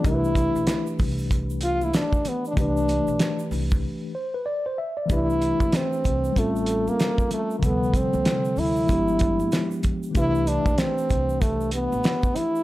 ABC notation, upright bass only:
X:1
M:4/4
L:1/16
Q:"Swing 16ths" 1/4=95
K:C
V:1 name="Upright bass" clef=bass
C,,3 B,,, z2 C,,6 z4 | C,,3 B,,, z2 C,,2 z8 | C,,3 B,,, z2 C,,2 A,,,4 z4 | D,,3 C,, z2 D,,2 G,,,4 z4 |
C,,3 B,,, z2 C,,4- C,, A,,, z4 |]